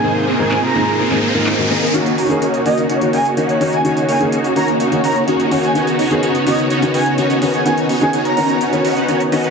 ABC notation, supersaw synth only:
X:1
M:4/4
L:1/16
Q:1/4=126
K:Ebm
V:1 name="Supersaw synth"
[B,=CEA=c]2 [B,CEAc]2 [B,CEAc]2 [B,CEAc]2 [B,CEAc]2 [B,CEAc] [B,CEAf] [B,CEAc] z [B,CEAe] [B,CEAB] | [B,DEGd]2 [B,DEGd]2 [B,DEGd]2 [B,DEGd]2 [B,DEGd]2 [B,DEGd]2 [B,DEGd]2 [B,DEGd]2 | [B,DEGd]2 [B,DEGd]2 [B,DEGd]2 [B,DEGd]2 [B,DEGd]2 [B,DEGd]2 [B,DEGd]2 [B,DEGd]2 | [=B,^C^D^F^c]2 [B,CDFc]2 [B,CDFc]2 [B,CDFc]2 [B,CDFc]2 [B,CDFc]2 [B,CDFc]2 [B,CDFc]2 |
[=B,^C^D^F^c]2 [B,CDFc]2 [B,CDFc]2 [B,CDFc]2 [B,CDFc]2 [B,CDFc] [B,CDF^f] [B,CDFc] z [B,CDF^d] [B,CDF=B] |]